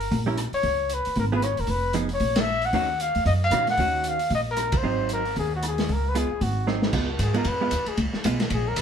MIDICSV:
0, 0, Header, 1, 6, 480
1, 0, Start_track
1, 0, Tempo, 262582
1, 1164, Time_signature, 4, 2, 24, 8
1, 16114, End_track
2, 0, Start_track
2, 0, Title_t, "Trumpet"
2, 0, Program_c, 0, 56
2, 0, Note_on_c, 0, 70, 91
2, 408, Note_off_c, 0, 70, 0
2, 990, Note_on_c, 0, 73, 89
2, 1710, Note_on_c, 0, 71, 78
2, 1737, Note_off_c, 0, 73, 0
2, 2156, Note_off_c, 0, 71, 0
2, 2182, Note_on_c, 0, 70, 81
2, 2296, Note_off_c, 0, 70, 0
2, 2478, Note_on_c, 0, 71, 82
2, 2628, Note_on_c, 0, 73, 75
2, 2656, Note_off_c, 0, 71, 0
2, 2926, Note_on_c, 0, 70, 76
2, 2954, Note_off_c, 0, 73, 0
2, 3109, Note_on_c, 0, 71, 86
2, 3136, Note_off_c, 0, 70, 0
2, 3575, Note_off_c, 0, 71, 0
2, 3908, Note_on_c, 0, 73, 88
2, 4388, Note_on_c, 0, 76, 98
2, 4416, Note_off_c, 0, 73, 0
2, 4850, Note_on_c, 0, 78, 89
2, 4877, Note_off_c, 0, 76, 0
2, 5512, Note_on_c, 0, 77, 94
2, 5540, Note_off_c, 0, 78, 0
2, 5960, Note_off_c, 0, 77, 0
2, 5971, Note_on_c, 0, 75, 83
2, 6096, Note_off_c, 0, 75, 0
2, 6288, Note_on_c, 0, 77, 102
2, 6715, Note_off_c, 0, 77, 0
2, 6763, Note_on_c, 0, 78, 97
2, 7471, Note_on_c, 0, 77, 94
2, 7499, Note_off_c, 0, 78, 0
2, 7917, Note_off_c, 0, 77, 0
2, 7945, Note_on_c, 0, 75, 85
2, 8059, Note_off_c, 0, 75, 0
2, 8244, Note_on_c, 0, 70, 86
2, 8728, Note_on_c, 0, 72, 83
2, 8756, Note_off_c, 0, 70, 0
2, 9363, Note_off_c, 0, 72, 0
2, 9377, Note_on_c, 0, 70, 89
2, 9798, Note_off_c, 0, 70, 0
2, 9851, Note_on_c, 0, 68, 81
2, 10093, Note_off_c, 0, 68, 0
2, 10159, Note_on_c, 0, 66, 78
2, 10308, Note_off_c, 0, 66, 0
2, 10377, Note_on_c, 0, 68, 73
2, 10832, Note_on_c, 0, 70, 80
2, 10860, Note_off_c, 0, 68, 0
2, 11126, Note_on_c, 0, 71, 80
2, 11153, Note_off_c, 0, 70, 0
2, 11290, Note_on_c, 0, 68, 77
2, 11317, Note_off_c, 0, 71, 0
2, 11746, Note_on_c, 0, 66, 73
2, 11774, Note_off_c, 0, 68, 0
2, 12215, Note_off_c, 0, 66, 0
2, 13208, Note_on_c, 0, 68, 72
2, 13451, Note_off_c, 0, 68, 0
2, 13472, Note_on_c, 0, 70, 83
2, 13674, Note_on_c, 0, 71, 86
2, 13701, Note_off_c, 0, 70, 0
2, 14411, Note_on_c, 0, 68, 68
2, 14439, Note_off_c, 0, 71, 0
2, 14606, Note_off_c, 0, 68, 0
2, 15610, Note_on_c, 0, 68, 79
2, 15869, Note_on_c, 0, 70, 81
2, 15897, Note_off_c, 0, 68, 0
2, 16104, Note_off_c, 0, 70, 0
2, 16114, End_track
3, 0, Start_track
3, 0, Title_t, "Hollow-body jazz guitar"
3, 0, Program_c, 1, 26
3, 479, Note_on_c, 1, 55, 52
3, 491, Note_on_c, 1, 61, 54
3, 502, Note_on_c, 1, 70, 55
3, 505, Note_on_c, 1, 64, 60
3, 660, Note_off_c, 1, 55, 0
3, 666, Note_off_c, 1, 61, 0
3, 672, Note_off_c, 1, 70, 0
3, 673, Note_off_c, 1, 64, 0
3, 2419, Note_on_c, 1, 59, 58
3, 2431, Note_on_c, 1, 68, 61
3, 2437, Note_on_c, 1, 65, 58
3, 2589, Note_off_c, 1, 59, 0
3, 2595, Note_off_c, 1, 68, 0
3, 2598, Note_off_c, 1, 65, 0
3, 3547, Note_on_c, 1, 53, 47
3, 3556, Note_on_c, 1, 63, 50
3, 3558, Note_on_c, 1, 59, 55
3, 3571, Note_on_c, 1, 68, 52
3, 3810, Note_off_c, 1, 53, 0
3, 3815, Note_off_c, 1, 63, 0
3, 3816, Note_off_c, 1, 59, 0
3, 3822, Note_off_c, 1, 68, 0
3, 5006, Note_on_c, 1, 51, 57
3, 5013, Note_on_c, 1, 58, 65
3, 5027, Note_on_c, 1, 61, 61
3, 5039, Note_on_c, 1, 66, 72
3, 5259, Note_off_c, 1, 51, 0
3, 5263, Note_off_c, 1, 58, 0
3, 5270, Note_off_c, 1, 61, 0
3, 5276, Note_off_c, 1, 66, 0
3, 6447, Note_on_c, 1, 51, 51
3, 6450, Note_on_c, 1, 58, 55
3, 6459, Note_on_c, 1, 61, 44
3, 6472, Note_on_c, 1, 66, 48
3, 6700, Note_off_c, 1, 51, 0
3, 6701, Note_off_c, 1, 58, 0
3, 6706, Note_off_c, 1, 61, 0
3, 6712, Note_off_c, 1, 66, 0
3, 6928, Note_on_c, 1, 51, 50
3, 6940, Note_on_c, 1, 61, 53
3, 6943, Note_on_c, 1, 58, 51
3, 6950, Note_on_c, 1, 66, 57
3, 7632, Note_off_c, 1, 51, 0
3, 7638, Note_off_c, 1, 61, 0
3, 7639, Note_off_c, 1, 58, 0
3, 7643, Note_off_c, 1, 66, 0
3, 8840, Note_on_c, 1, 60, 48
3, 8848, Note_on_c, 1, 54, 48
3, 8859, Note_on_c, 1, 63, 53
3, 9549, Note_off_c, 1, 60, 0
3, 9552, Note_off_c, 1, 54, 0
3, 9558, Note_off_c, 1, 63, 0
3, 11238, Note_on_c, 1, 56, 47
3, 11256, Note_on_c, 1, 59, 55
3, 11258, Note_on_c, 1, 65, 51
3, 11496, Note_off_c, 1, 56, 0
3, 11505, Note_off_c, 1, 59, 0
3, 11506, Note_off_c, 1, 65, 0
3, 12193, Note_on_c, 1, 54, 41
3, 12200, Note_on_c, 1, 60, 51
3, 12210, Note_on_c, 1, 63, 48
3, 12651, Note_off_c, 1, 54, 0
3, 12659, Note_on_c, 1, 56, 53
3, 12671, Note_off_c, 1, 60, 0
3, 12679, Note_on_c, 1, 59, 59
3, 12683, Note_off_c, 1, 63, 0
3, 12691, Note_on_c, 1, 65, 60
3, 12927, Note_off_c, 1, 56, 0
3, 12937, Note_off_c, 1, 59, 0
3, 12943, Note_off_c, 1, 65, 0
3, 13418, Note_on_c, 1, 56, 55
3, 13428, Note_on_c, 1, 59, 59
3, 13452, Note_on_c, 1, 65, 65
3, 13609, Note_off_c, 1, 56, 0
3, 13615, Note_off_c, 1, 59, 0
3, 13626, Note_off_c, 1, 65, 0
3, 13911, Note_on_c, 1, 56, 60
3, 13921, Note_on_c, 1, 59, 59
3, 13937, Note_on_c, 1, 65, 58
3, 14096, Note_off_c, 1, 56, 0
3, 14101, Note_off_c, 1, 59, 0
3, 14109, Note_off_c, 1, 65, 0
3, 15083, Note_on_c, 1, 56, 54
3, 15084, Note_on_c, 1, 59, 63
3, 15097, Note_on_c, 1, 65, 70
3, 15339, Note_off_c, 1, 56, 0
3, 15340, Note_off_c, 1, 59, 0
3, 15346, Note_off_c, 1, 65, 0
3, 16114, End_track
4, 0, Start_track
4, 0, Title_t, "Upright bass"
4, 0, Program_c, 2, 32
4, 205, Note_on_c, 2, 34, 81
4, 915, Note_off_c, 2, 34, 0
4, 1157, Note_on_c, 2, 37, 75
4, 1870, Note_off_c, 2, 37, 0
4, 2130, Note_on_c, 2, 32, 81
4, 2837, Note_off_c, 2, 32, 0
4, 2903, Note_on_c, 2, 28, 64
4, 3046, Note_off_c, 2, 28, 0
4, 3057, Note_on_c, 2, 29, 72
4, 3981, Note_off_c, 2, 29, 0
4, 4029, Note_on_c, 2, 34, 80
4, 4947, Note_off_c, 2, 34, 0
4, 4985, Note_on_c, 2, 39, 72
4, 5703, Note_off_c, 2, 39, 0
4, 5768, Note_on_c, 2, 40, 63
4, 5940, Note_off_c, 2, 40, 0
4, 5951, Note_on_c, 2, 42, 84
4, 6394, Note_off_c, 2, 42, 0
4, 6405, Note_on_c, 2, 46, 66
4, 6869, Note_off_c, 2, 46, 0
4, 6903, Note_on_c, 2, 39, 73
4, 7824, Note_off_c, 2, 39, 0
4, 7867, Note_on_c, 2, 34, 78
4, 8585, Note_off_c, 2, 34, 0
4, 8633, Note_on_c, 2, 39, 65
4, 8809, Note_off_c, 2, 39, 0
4, 8820, Note_on_c, 2, 32, 67
4, 9743, Note_off_c, 2, 32, 0
4, 9809, Note_on_c, 2, 39, 84
4, 10718, Note_off_c, 2, 39, 0
4, 10770, Note_on_c, 2, 37, 72
4, 11477, Note_off_c, 2, 37, 0
4, 11716, Note_on_c, 2, 32, 81
4, 12632, Note_off_c, 2, 32, 0
4, 12671, Note_on_c, 2, 37, 74
4, 13129, Note_off_c, 2, 37, 0
4, 13140, Note_on_c, 2, 44, 81
4, 13606, Note_off_c, 2, 44, 0
4, 13617, Note_on_c, 2, 41, 85
4, 14096, Note_off_c, 2, 41, 0
4, 14106, Note_on_c, 2, 39, 73
4, 14360, Note_off_c, 2, 39, 0
4, 14577, Note_on_c, 2, 37, 82
4, 14853, Note_off_c, 2, 37, 0
4, 15074, Note_on_c, 2, 35, 74
4, 15532, Note_off_c, 2, 35, 0
4, 15543, Note_on_c, 2, 34, 84
4, 16019, Note_off_c, 2, 34, 0
4, 16030, Note_on_c, 2, 35, 77
4, 16114, Note_off_c, 2, 35, 0
4, 16114, End_track
5, 0, Start_track
5, 0, Title_t, "Muted upright bass strokes"
5, 952, Note_on_c, 9, 29, 32
5, 1135, Note_off_c, 9, 29, 0
5, 1950, Note_on_c, 9, 29, 38
5, 2132, Note_off_c, 9, 29, 0
5, 11521, Note_on_c, 9, 29, 33
5, 11704, Note_off_c, 9, 29, 0
5, 14371, Note_on_c, 9, 29, 36
5, 14554, Note_off_c, 9, 29, 0
5, 14866, Note_on_c, 9, 29, 35
5, 15049, Note_off_c, 9, 29, 0
5, 16114, End_track
6, 0, Start_track
6, 0, Title_t, "Drums"
6, 10, Note_on_c, 9, 46, 34
6, 193, Note_off_c, 9, 46, 0
6, 210, Note_on_c, 9, 36, 30
6, 213, Note_on_c, 9, 46, 40
6, 393, Note_off_c, 9, 36, 0
6, 396, Note_off_c, 9, 46, 0
6, 686, Note_on_c, 9, 42, 50
6, 695, Note_on_c, 9, 37, 56
6, 869, Note_off_c, 9, 42, 0
6, 878, Note_off_c, 9, 37, 0
6, 968, Note_on_c, 9, 46, 33
6, 1151, Note_off_c, 9, 46, 0
6, 1155, Note_on_c, 9, 46, 43
6, 1164, Note_on_c, 9, 36, 29
6, 1337, Note_off_c, 9, 46, 0
6, 1347, Note_off_c, 9, 36, 0
6, 1635, Note_on_c, 9, 42, 46
6, 1818, Note_off_c, 9, 42, 0
6, 1920, Note_on_c, 9, 46, 36
6, 2103, Note_off_c, 9, 46, 0
6, 2112, Note_on_c, 9, 46, 42
6, 2124, Note_on_c, 9, 36, 34
6, 2295, Note_off_c, 9, 46, 0
6, 2307, Note_off_c, 9, 36, 0
6, 2602, Note_on_c, 9, 42, 46
6, 2611, Note_on_c, 9, 37, 54
6, 2784, Note_off_c, 9, 42, 0
6, 2794, Note_off_c, 9, 37, 0
6, 2876, Note_on_c, 9, 46, 32
6, 3052, Note_off_c, 9, 46, 0
6, 3052, Note_on_c, 9, 46, 40
6, 3071, Note_on_c, 9, 36, 27
6, 3235, Note_off_c, 9, 46, 0
6, 3253, Note_off_c, 9, 36, 0
6, 3534, Note_on_c, 9, 42, 47
6, 3717, Note_off_c, 9, 42, 0
6, 3821, Note_on_c, 9, 46, 33
6, 4003, Note_off_c, 9, 46, 0
6, 4018, Note_on_c, 9, 46, 44
6, 4027, Note_on_c, 9, 36, 30
6, 4200, Note_off_c, 9, 46, 0
6, 4210, Note_off_c, 9, 36, 0
6, 4307, Note_on_c, 9, 51, 63
6, 4316, Note_on_c, 9, 38, 69
6, 4490, Note_off_c, 9, 51, 0
6, 4499, Note_off_c, 9, 38, 0
6, 4784, Note_on_c, 9, 46, 34
6, 4967, Note_off_c, 9, 46, 0
6, 4988, Note_on_c, 9, 46, 38
6, 4992, Note_on_c, 9, 36, 29
6, 5171, Note_off_c, 9, 46, 0
6, 5175, Note_off_c, 9, 36, 0
6, 5480, Note_on_c, 9, 42, 44
6, 5663, Note_off_c, 9, 42, 0
6, 5757, Note_on_c, 9, 46, 31
6, 5940, Note_off_c, 9, 46, 0
6, 5951, Note_on_c, 9, 36, 30
6, 5957, Note_on_c, 9, 46, 44
6, 6134, Note_off_c, 9, 36, 0
6, 6140, Note_off_c, 9, 46, 0
6, 6419, Note_on_c, 9, 42, 49
6, 6428, Note_on_c, 9, 37, 62
6, 6602, Note_off_c, 9, 42, 0
6, 6611, Note_off_c, 9, 37, 0
6, 6710, Note_on_c, 9, 46, 31
6, 6720, Note_on_c, 9, 38, 28
6, 6893, Note_off_c, 9, 46, 0
6, 6901, Note_on_c, 9, 46, 42
6, 6902, Note_off_c, 9, 38, 0
6, 6907, Note_on_c, 9, 36, 29
6, 7084, Note_off_c, 9, 46, 0
6, 7090, Note_off_c, 9, 36, 0
6, 7382, Note_on_c, 9, 42, 46
6, 7564, Note_off_c, 9, 42, 0
6, 7667, Note_on_c, 9, 46, 37
6, 7850, Note_off_c, 9, 46, 0
6, 7867, Note_on_c, 9, 46, 41
6, 7872, Note_on_c, 9, 36, 31
6, 8049, Note_off_c, 9, 46, 0
6, 8055, Note_off_c, 9, 36, 0
6, 8347, Note_on_c, 9, 42, 51
6, 8356, Note_on_c, 9, 37, 60
6, 8530, Note_off_c, 9, 42, 0
6, 8539, Note_off_c, 9, 37, 0
6, 8630, Note_on_c, 9, 51, 61
6, 8638, Note_on_c, 9, 36, 72
6, 8812, Note_off_c, 9, 51, 0
6, 8821, Note_off_c, 9, 36, 0
6, 9305, Note_on_c, 9, 42, 44
6, 9488, Note_off_c, 9, 42, 0
6, 9604, Note_on_c, 9, 46, 32
6, 9787, Note_off_c, 9, 46, 0
6, 9799, Note_on_c, 9, 46, 40
6, 9808, Note_on_c, 9, 36, 32
6, 9982, Note_off_c, 9, 46, 0
6, 9991, Note_off_c, 9, 36, 0
6, 10285, Note_on_c, 9, 42, 53
6, 10294, Note_on_c, 9, 37, 52
6, 10468, Note_off_c, 9, 42, 0
6, 10477, Note_off_c, 9, 37, 0
6, 10568, Note_on_c, 9, 46, 33
6, 10577, Note_on_c, 9, 38, 52
6, 10751, Note_off_c, 9, 46, 0
6, 10760, Note_off_c, 9, 38, 0
6, 10767, Note_on_c, 9, 46, 36
6, 10768, Note_on_c, 9, 36, 30
6, 10950, Note_off_c, 9, 46, 0
6, 10951, Note_off_c, 9, 36, 0
6, 11248, Note_on_c, 9, 42, 47
6, 11431, Note_off_c, 9, 42, 0
6, 11722, Note_on_c, 9, 46, 46
6, 11723, Note_on_c, 9, 36, 31
6, 11905, Note_off_c, 9, 46, 0
6, 11906, Note_off_c, 9, 36, 0
6, 12196, Note_on_c, 9, 38, 42
6, 12379, Note_off_c, 9, 38, 0
6, 12472, Note_on_c, 9, 38, 53
6, 12655, Note_off_c, 9, 38, 0
6, 12663, Note_on_c, 9, 49, 66
6, 12671, Note_on_c, 9, 36, 61
6, 12846, Note_off_c, 9, 49, 0
6, 12853, Note_off_c, 9, 36, 0
6, 13142, Note_on_c, 9, 44, 52
6, 13142, Note_on_c, 9, 51, 58
6, 13149, Note_on_c, 9, 36, 22
6, 13325, Note_off_c, 9, 44, 0
6, 13325, Note_off_c, 9, 51, 0
6, 13332, Note_off_c, 9, 36, 0
6, 13423, Note_on_c, 9, 51, 43
6, 13605, Note_off_c, 9, 51, 0
6, 13609, Note_on_c, 9, 51, 55
6, 13626, Note_on_c, 9, 36, 20
6, 13792, Note_off_c, 9, 51, 0
6, 13809, Note_off_c, 9, 36, 0
6, 14092, Note_on_c, 9, 44, 50
6, 14092, Note_on_c, 9, 51, 61
6, 14109, Note_on_c, 9, 36, 19
6, 14275, Note_off_c, 9, 44, 0
6, 14275, Note_off_c, 9, 51, 0
6, 14292, Note_off_c, 9, 36, 0
6, 14372, Note_on_c, 9, 51, 39
6, 14555, Note_off_c, 9, 51, 0
6, 14576, Note_on_c, 9, 51, 50
6, 14587, Note_on_c, 9, 36, 22
6, 14759, Note_off_c, 9, 51, 0
6, 14770, Note_off_c, 9, 36, 0
6, 14870, Note_on_c, 9, 38, 34
6, 15053, Note_off_c, 9, 38, 0
6, 15062, Note_on_c, 9, 44, 57
6, 15062, Note_on_c, 9, 51, 61
6, 15071, Note_on_c, 9, 36, 19
6, 15245, Note_off_c, 9, 44, 0
6, 15245, Note_off_c, 9, 51, 0
6, 15253, Note_off_c, 9, 36, 0
6, 15350, Note_on_c, 9, 51, 45
6, 15359, Note_on_c, 9, 38, 51
6, 15533, Note_off_c, 9, 51, 0
6, 15542, Note_off_c, 9, 38, 0
6, 15542, Note_on_c, 9, 51, 56
6, 15552, Note_on_c, 9, 36, 20
6, 15725, Note_off_c, 9, 51, 0
6, 15735, Note_off_c, 9, 36, 0
6, 16018, Note_on_c, 9, 44, 59
6, 16018, Note_on_c, 9, 51, 72
6, 16028, Note_on_c, 9, 36, 23
6, 16114, Note_off_c, 9, 36, 0
6, 16114, Note_off_c, 9, 44, 0
6, 16114, Note_off_c, 9, 51, 0
6, 16114, End_track
0, 0, End_of_file